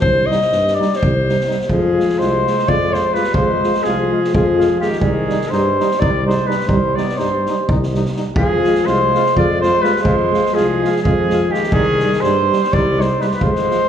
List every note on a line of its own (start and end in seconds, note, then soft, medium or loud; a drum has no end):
0.01 0.30 C2 loud
0.01 0.28 C5 loud
0.01 kick medium
0.26 0.38 G3 medium
0.26 0.76 D#5 loud
0.30 0.39 D#4 medium
0.30 snare soft
0.41 snare soft
0.52 0.80 G2 medium
0.52 snare soft
0.67 snare soft
0.74 0.98 D5 loud
0.79 0.88 G3 medium
0.79 0.88 D#4 medium
0.79 snare soft
0.93 1.66 C5 medium
0.93 snare soft
1.03 1.40 C2 loud
1.03 kick medium
1.28 1.36 G3 medium
1.28 1.36 D#4 medium
1.28 snare soft
1.41 snare soft
1.47 1.57 G3 medium
1.47 1.56 D#4 medium
1.47 snare soft
1.61 snare soft
1.69 1.97 F2 loud
1.69 2.21 F3 medium
1.69 1.82 G#3 medium
1.69 1.80 F4 medium
1.69 2.20 G#4 medium
1.69 kick medium
1.97 2.05 G#3 medium
1.97 2.05 F4 medium
1.97 snare soft
2.09 snare soft
2.17 2.47 C2 loud
2.17 2.30 G#3 medium
2.17 2.69 G#3 medium
2.17 2.29 F4 medium
2.17 2.70 C5 loud
2.17 snare soft
2.46 2.56 G#3 medium
2.46 2.55 F4 medium
2.46 snare soft
2.58 snare soft
2.67 3.05 F2 loud
2.67 2.77 G#3 medium
2.67 2.97 G#3 medium
2.67 2.77 F4 medium
2.67 2.95 D5 loud
2.67 kick medium
2.91 3.00 G#3 medium
2.91 3.01 F4 medium
2.91 3.16 C5 loud
2.91 snare soft
2.97 3.19 G#3 medium
3.12 3.21 G#3 medium
3.12 3.23 F4 medium
3.12 3.35 B4 medium
3.12 snare soft
3.17 3.42 G3 medium
3.24 snare soft
3.34 3.62 F2 medium
3.34 3.46 G#3 medium
3.34 3.46 F4 medium
3.34 3.85 C5 loud
3.34 kick medium
3.40 3.88 G#3 loud
3.62 3.71 G#3 medium
3.62 3.73 F4 medium
3.62 snare soft
3.74 snare soft
3.83 4.11 C2 medium
3.83 4.36 F3 medium
3.83 3.95 G#3 medium
3.83 3.97 F4 medium
3.83 4.34 G#4 medium
3.83 snare soft
4.11 4.20 G#3 medium
4.11 4.20 F4 medium
4.24 snare soft
4.33 4.72 F2 loud
4.33 4.78 F3 medium
4.33 4.44 G#3 medium
4.33 4.45 F4 medium
4.33 4.77 G#4 medium
4.33 kick loud
4.58 4.67 G#3 medium
4.58 4.66 F4 medium
4.58 snare soft
4.79 5.00 D#3 medium
4.79 4.88 G#3 medium
4.79 4.88 F4 medium
4.79 5.00 G4 medium
4.79 snare soft
4.92 snare soft
4.99 5.30 C2 medium
4.99 5.54 D#3 medium
4.99 5.11 G3 medium
4.99 5.13 D#4 medium
4.99 5.52 G#4 medium
4.99 kick medium
5.28 5.37 G3 medium
5.28 5.39 D#4 medium
5.28 snare soft
5.41 snare soft
5.50 5.79 G2 medium
5.50 5.63 G3 medium
5.50 6.01 G3 medium
5.50 5.63 D#4 medium
5.50 6.01 C5 loud
5.50 snare soft
5.79 5.89 G3 medium
5.79 5.88 D#4 medium
5.79 snare soft
5.91 snare soft
5.99 6.38 C2 loud
5.99 6.26 G3 medium
5.99 6.12 G3 medium
5.99 6.10 D#4 medium
5.99 6.26 D5 medium
5.99 kick loud
6.25 6.34 G3 medium
6.25 6.49 G#3 medium
6.25 6.35 D#4 medium
6.25 6.48 C5 medium
6.30 snare soft
6.46 6.55 G3 medium
6.46 6.69 G3 medium
6.46 6.56 D#4 medium
6.46 6.69 B4 medium
6.50 snare soft
6.60 snare soft
6.67 6.96 C2 loud
6.67 6.79 G3 medium
6.67 6.99 G3 medium
6.67 6.79 D#4 medium
6.67 6.97 C5 loud
6.67 kick medium
6.95 7.04 G3 medium
6.95 7.21 B3 medium
6.95 7.06 D#4 medium
6.95 7.18 D5 medium
6.95 snare soft
7.09 snare soft
7.17 7.48 G2 medium
7.17 7.29 G3 medium
7.17 7.76 G3 medium
7.17 7.29 D#4 medium
7.17 7.74 C5 medium
7.17 snare soft
7.46 7.56 G3 medium
7.46 7.56 D#4 medium
7.46 snare soft
7.68 8.07 C2 loud
7.68 7.78 G3 medium
7.68 7.79 D#4 medium
7.68 kick loud
7.83 snare soft
7.94 8.02 G3 medium
7.94 8.03 D#4 medium
7.94 snare soft
8.05 snare soft
8.15 8.23 G3 medium
8.15 8.25 D#4 medium
8.15 snare soft
8.35 8.64 F2 medium
8.35 8.87 F3 loud
8.35 8.46 G#3 medium
8.35 8.48 F4 medium
8.35 8.87 G#4 loud
8.35 kick loud
8.64 8.73 G#3 medium
8.64 8.74 F4 medium
8.64 snare soft
8.75 snare soft
8.86 9.14 C2 medium
8.86 9.36 G#3 medium
8.86 8.98 G#3 medium
8.86 8.99 F4 medium
8.86 9.36 C5 loud
8.86 snare soft
9.14 9.23 G#3 medium
9.14 9.23 F4 medium
9.14 snare soft
9.26 snare soft
9.36 9.73 F2 loud
9.36 9.48 G#3 medium
9.36 9.61 G#3 medium
9.36 9.47 F4 medium
9.36 9.61 D5 medium
9.36 kick medium
9.61 9.69 G#3 medium
9.61 9.84 G#3 medium
9.61 9.71 F4 medium
9.61 9.84 C5 loud
9.61 snare soft
9.82 10.05 G3 medium
9.82 9.90 G#3 medium
9.82 9.91 F4 medium
9.82 10.03 B4 medium
9.82 snare soft
9.96 snare soft
10.01 10.32 F2 medium
10.01 10.14 G#3 medium
10.01 10.54 G#3 loud
10.01 10.16 F4 medium
10.01 10.56 C5 medium
10.01 kick medium
10.31 10.40 G#3 medium
10.31 10.42 F4 medium
10.31 snare soft
10.46 snare soft
10.53 10.83 C2 medium
10.53 11.01 F3 medium
10.53 10.65 G#3 medium
10.53 10.66 F4 medium
10.53 11.02 G#4 loud
10.57 snare soft
10.81 10.90 G#3 medium
10.81 10.93 F4 medium
10.81 snare soft
10.96 snare soft
11.01 11.51 F3 medium
11.01 11.14 G#3 medium
11.01 11.15 F4 medium
11.01 11.52 G#4 loud
11.01 kick medium
11.07 11.43 F2 loud
11.29 11.38 G#3 medium
11.29 11.40 F4 medium
11.29 snare soft
11.49 11.70 D#3 medium
11.49 11.59 G#3 medium
11.49 11.61 F4 medium
11.49 11.72 G4 medium
11.54 snare soft
11.63 snare soft
11.70 12.01 C2 medium
11.70 12.21 D#3 loud
11.70 11.84 G3 medium
11.70 11.85 D#4 medium
11.70 12.22 G#4 loud
11.70 kick loud
11.99 12.11 G3 medium
11.99 12.11 D#4 medium
11.99 snare soft
12.13 snare soft
12.20 12.50 G2 medium
12.20 12.71 G3 medium
12.20 12.35 G3 medium
12.20 12.74 C5 loud
12.20 snare soft
12.25 12.36 D#4 medium
12.51 12.60 G3 medium
12.51 12.60 D#4 medium
12.51 snare soft
12.64 snare soft
12.71 13.00 G3 loud
12.71 13.02 D5 medium
12.71 kick medium
12.75 13.11 C2 loud
12.75 12.85 G3 medium
12.75 12.84 D#4 medium
12.98 13.07 G3 medium
12.98 13.20 G#3 medium
12.98 13.07 D#4 medium
12.98 13.23 C5 loud
12.98 snare soft
13.19 13.28 G3 medium
13.19 13.28 D#4 medium
13.19 13.28 B4 medium
13.19 snare soft
13.26 13.39 G3 medium
13.26 13.30 G#3 medium
13.26 13.34 C5 medium
13.31 13.44 B4 medium
13.31 snare soft
13.38 13.69 F2 medium
13.38 13.89 G#3 loud
13.38 13.52 G#3 medium
13.38 13.51 F4 medium
13.38 kick medium
13.43 13.89 C5 loud
13.56 snare soft
13.69 13.79 G#3 medium
13.69 13.78 F4 soft
13.69 snare soft